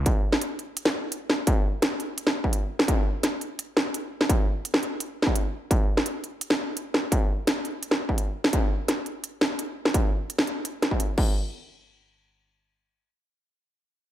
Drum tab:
CC |--------------------------------|--------------------------------|--------------------------------|--------------------------------|
HH |x-------x---x---x-------x-------|x-------x---x---x-------x-------|x-------x---x---x-------x-------|x-------x---x---x-------x-------|
SD |------o-----------o---------o---|--------o---------o-----------o-|--------o-----------o---------o-|----------o----------o----------|
BD |o-------------------------------|o---------------------o---------|o-------------------------------|o---------------------o---------|

CC |--------------------------------|--------------------------------|--------------------------------|----------------------------x---|
HH |x-------x---x---x-------x-------|x-------x---x---x-------x-------|x-------x---x---x-------x-------|x-------x---x---x---x---x-------|
SD |------o-----------o---------o---|--------o---------o-----------o-|--------o-----------o---------o-|----------o---------o-----------|
BD |o-------------------------------|o---------------------o---------|o-------------------------------|o---------------------o-----o---|

CC |--------------------------------|--------------------------------|
HH |--------------------------------|--------------------------------|
SD |--------------------------------|--------------------------------|
BD |--------------------------------|--------------------------------|